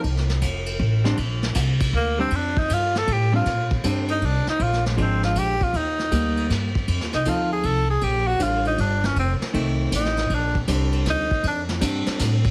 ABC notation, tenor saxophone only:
X:1
M:3/4
L:1/8
Q:"Swing" 1/4=158
K:Bb
V:1 name="Tenor saxophone"
z6 | z4 B, C | D E F A G F- | F z2 E D E |
F _A, C F G F | E4 z2 | z E F _A =A _A | G _G F E D _D |
C z3 E2 | D z3 E2 | D z4 z |]